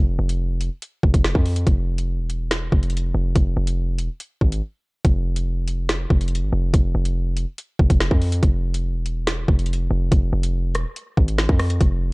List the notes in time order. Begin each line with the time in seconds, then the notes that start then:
Already playing: F1
0.19 F1
0.29 closed hi-hat
0.61 closed hi-hat
0.82 closed hi-hat
1.03 F1, kick
1.14 F1, kick, closed hi-hat
1.24 snare
1.35 F2, kick
1.46 closed hi-hat, open hi-hat
1.56 closed hi-hat
1.67 F1, kick, closed hi-hat
1.98 closed hi-hat
2.20 E1
2.30 closed hi-hat
2.51 snare, closed hi-hat
2.72 F1, kick
2.83 closed hi-hat
2.90 closed hi-hat
2.97 closed hi-hat
3.14 F1
3.36 F1, kick, closed hi-hat
3.57 F1
3.67 closed hi-hat
3.98 E1, closed hi-hat
4.20 closed hi-hat
4.41 G#1, kick
4.52 closed hi-hat
5.05 F1, kick, closed hi-hat
5.36 closed hi-hat
5.68 closed hi-hat
5.89 snare, closed hi-hat
6.10 F1, kick
6.21 closed hi-hat
6.28 closed hi-hat
6.35 closed hi-hat
6.42 G#1
6.53 F1
6.74 F1, kick, closed hi-hat
6.95 F1
7.05 closed hi-hat
7.37 closed hi-hat
7.58 closed hi-hat
7.79 F1, kick
7.90 F1, kick, closed hi-hat
8.00 snare
8.11 F2, kick
8.22 closed hi-hat, open hi-hat
8.32 closed hi-hat
8.43 F1, kick, closed hi-hat
8.74 closed hi-hat
8.96 E1
9.06 closed hi-hat
9.27 snare, closed hi-hat
9.48 F1, kick
9.59 closed hi-hat
9.66 closed hi-hat
9.73 closed hi-hat
9.91 F1
10.12 F1, kick, closed hi-hat
10.33 F1
10.43 closed hi-hat
10.75 E1, cross-stick, closed hi-hat
10.96 closed hi-hat
11.17 G#1, kick
11.28 closed hi-hat
11.38 snare
11.49 F2, kick
11.59 cross-stick, closed hi-hat, open hi-hat
11.70 closed hi-hat
11.81 F1, kick, closed hi-hat